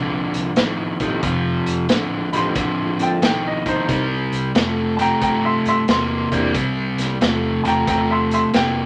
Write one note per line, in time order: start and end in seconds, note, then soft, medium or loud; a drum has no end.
0.00 0.26 C2 medium
0.00 0.52 F2 medium
0.00 0.53 D3 medium
0.34 0.53 C2 medium
0.34 closed hi-hat medium
0.56 0.93 A1 medium
0.56 0.96 F2 medium
0.56 0.96 D#3 medium
0.56 snare loud
0.56 closed hi-hat medium
1.00 1.19 A1 medium
1.00 1.21 F2 medium
1.00 1.21 D#3 medium
1.00 1.21 F3 medium
1.00 1.21 A3 medium
1.00 1.21 C4 medium
1.00 1.21 D#4 medium
1.00 1.22 G4 medium
1.00 kick medium
1.00 closed hi-hat medium
1.23 1.59 F1 loud
1.23 1.85 F2 medium
1.23 1.85 C3 loud
1.23 kick loud
1.23 closed hi-hat medium
1.66 1.85 F1 medium
1.66 closed hi-hat medium
1.89 2.25 A1 medium
1.89 2.29 F2 medium
1.89 2.29 D3 loud
1.89 snare loud
1.89 closed hi-hat medium
2.32 2.52 A1 medium
2.32 2.54 F2 medium
2.32 2.54 D3 medium
2.32 2.54 F3 medium
2.32 2.54 A3 medium
2.32 2.54 C4 medium
2.32 2.54 D#4 medium
2.32 2.54 G4 medium
2.32 2.38 B5 medium
2.32 closed hi-hat medium
2.37 3.00 C6 medium
2.55 3.10 A1 medium
2.55 3.17 F2 medium
2.55 3.18 D3 medium
2.55 kick loud
2.55 closed hi-hat medium
2.99 3.20 F3 medium
2.99 3.20 A3 medium
2.99 3.20 C4 medium
2.99 3.21 D#4 medium
2.99 3.21 A4 medium
2.99 3.23 G5 medium
2.99 closed hi-hat medium
3.22 3.76 B1 medium
3.22 3.62 F2 medium
3.22 3.62 D#3 medium
3.22 3.45 G5 medium
3.22 snare loud
3.22 closed hi-hat medium
3.47 3.68 D#5 medium
3.66 3.87 F2 medium
3.66 3.87 D#3 medium
3.66 4.02 D#4 medium
3.66 4.03 C5 medium
3.66 kick medium
3.66 closed hi-hat medium
3.88 4.25 C2 loud
3.88 4.51 C3 medium
3.88 4.51 G3 loud
3.88 kick loud
3.88 closed hi-hat medium
4.32 4.51 C2 medium
4.32 closed hi-hat medium
4.55 5.10 F2 medium
4.55 4.95 C3 medium
4.55 4.95 A3 loud
4.55 snare loud
4.55 closed hi-hat medium
4.97 5.20 C3 medium
4.97 5.20 A3 medium
4.97 5.21 G5 medium
4.97 5.02 A5 medium
4.97 closed hi-hat medium
5.01 5.22 A#5 loud
5.21 5.57 G2 medium
5.21 5.84 C3 medium
5.21 5.84 A3 medium
5.21 5.43 G5 medium
5.21 5.44 A#5 medium
5.21 kick loud
5.21 closed hi-hat medium
5.45 5.65 E5 medium
5.45 5.66 C6 medium
5.65 5.84 G2 medium
5.65 5.88 E5 medium
5.65 5.89 C6 loud
5.65 closed hi-hat medium
5.88 6.24 E2 medium
5.88 6.28 C3 medium
5.88 6.28 A#3 loud
5.88 6.32 C6 loud
5.88 snare loud
5.88 closed hi-hat medium
6.31 6.51 E2 medium
6.31 6.53 C3 medium
6.31 6.52 E3 medium
6.31 6.52 A#3 medium
6.31 6.53 A#3 medium
6.31 6.52 C4 medium
6.31 6.52 D4 medium
6.31 6.53 G4 medium
6.31 kick medium
6.31 closed hi-hat medium
6.54 6.90 C2 loud
6.54 7.17 C3 medium
6.54 7.17 G3 medium
6.54 kick loud
6.54 closed hi-hat medium
6.98 7.17 C2 medium
6.98 snare soft
6.98 closed hi-hat medium
7.21 7.57 E2 medium
7.21 7.60 C3 medium
7.21 7.61 A3 medium
7.21 snare loud
7.21 closed hi-hat medium
7.64 7.83 E2 medium
7.64 7.85 C3 medium
7.64 7.86 A3 medium
7.64 7.87 G5 medium
7.64 7.69 A5 medium
7.64 closed hi-hat medium
7.68 7.88 A#5 loud
7.87 8.42 E2 medium
7.87 8.49 C3 medium
7.87 8.50 A3 medium
7.87 8.09 G5 medium
7.87 8.10 A#5 medium
7.87 kick loud
7.87 closed hi-hat medium
8.11 8.31 E5 medium
8.11 8.32 C6 medium
8.31 8.53 E5 medium
8.31 8.55 C6 medium
8.31 closed hi-hat medium
8.53 8.86 F1 medium
8.53 8.86 C3 medium
8.53 8.86 A#3 medium
8.53 8.86 G5 loud
8.53 snare loud
8.53 closed hi-hat medium